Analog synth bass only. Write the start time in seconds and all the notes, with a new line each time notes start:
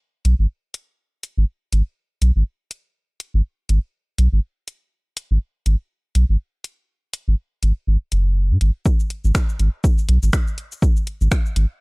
0.25 B1
0.39 G#1
1.37 G#1
1.72 G#1
2.22 B1
2.36 G#1
3.34 G#1
3.69 G#1
4.18 B1
4.32 G#1
5.31 G#1
5.66 G#1
6.15 B1
6.29 G#1
7.28 G#1
7.63 G#1
7.87 G#1
8.12 F#1
8.51 G#2
8.61 G#1
9.24 G#1
9.59 G#1
10.09 B1
10.23 G#1
11.21 G#1
11.56 G#1